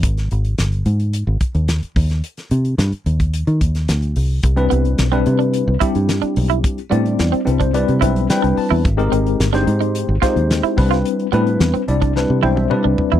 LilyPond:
<<
  \new Staff \with { instrumentName = "Clean electric guitar" } { \time 4/4 \key c \major \tempo 4 = 109 r1 | r1 | r8 b8 r16 c'8 d'8 r16 e'8 r16 d'8 e'16 | r8 b8 r16 c'8 d'8 r16 e'8 r16 d'8 e'16 |
r8 c'8 r16 d'8 ees'8 r16 f'8 r16 e'8 f'16 | r8 b8 r16 c'8 d'8 r16 e'8 r16 d'8 e'16 | }
  \new Staff \with { instrumentName = "Tine electric piano" } { \time 4/4 \key c \major << { r1 | r1 | r1 | r4. b'16 c''16 d''8 e''8 g''8 a''8 |
r1 | r2 r8 g''16 e''16 d''4 | } \\ { r1 | r1 | r16 <g c' d' e' b'>4 <g c' d' e' b'>4 r16 <g c' d' e' g'>4.~ | <g c' d' e' g'>16 r16 <g c' d' e' d''>4 <g c' d' e'>8 <g c' d' e' b'>8 <g c' d' e' b'>8 <g c' d' e' b'>4 |
r16 <aes c' ees' g' bes'>4 <aes c' ees' g' c''>4 r16 <aes c' ees' g' c''>4 <g c' d' e' b'>8~ | <g c' d' e' b'>8 <g c' d' e' b'>4 <g c' d' e' d''>8 <g c' d' e' b'>8 <g c' d' e' c''>8 <g c' d' e' b'>4 | } >> }
  \new Staff \with { instrumentName = "Fingered electric bass" } { \clef bass \time 4/4 \key c \major aes,,8 aes,,8 g,,8 aes,8. aes,,16 r16 ees,8 r16 ees,8 | r8 c8 g,16 r16 ees,8. ees16 ees,8 d,8 c,8 | c,8 c,8 b,,8 c8. c,16 r16 g,8 r16 b,,8 | r8 a,8 e,16 r16 c,8. c16 b,,8 r16 c,16 r16 e,16 |
aes,,8 aes,,8 g,,8 aes,8. aes,,16 r16 ees,8 r16 c,8 | r8 a,8 e,16 r16 c,8. c16 b,,8 r16 c,16 r16 e,16 | }
  \new DrumStaff \with { instrumentName = "Drums" } \drummode { \time 4/4 <hh bd>16 <hh sn>16 hh16 hh16 <hh sn>16 hh16 hh16 hh16 hh8 <hh bd>16 hh16 <hh sn>16 hh16 <hho bd>16 <hh sn>16 | hh16 <hh sn>16 hh16 hh16 <hh sn>16 hh16 hh16 <hh bd>16 hh16 hh16 <hh bd>16 <hh sn>16 <hh sn>16 hh16 hho8 | <hh bd>16 hh16 hh16 hh16 <hh sn>16 hh16 hh16 hh16 hh8 <hh bd>16 hh16 <hh sn>16 hh16 hho16 hh16 | <hh bd>16 hh16 hh16 hh16 <hh sn>16 hh16 hh16 <hh bd>16 hh16 hh16 <hh bd>16 hh16 <hh sn>16 hh16 hho8 |
<hh bd>16 hh16 hh16 hh16 <hh sn>16 <hh sn>16 hh16 hh16 hh8 <hh bd sn>16 hh16 <hh sn>16 hh16 <hho bd>16 <hh sn>16 | hh16 hh16 hh16 hh16 <hh sn>16 hh16 hh16 <hh bd>16 sn8 tommh16 tommh16 toml8 tomfh16 tomfh16 | }
>>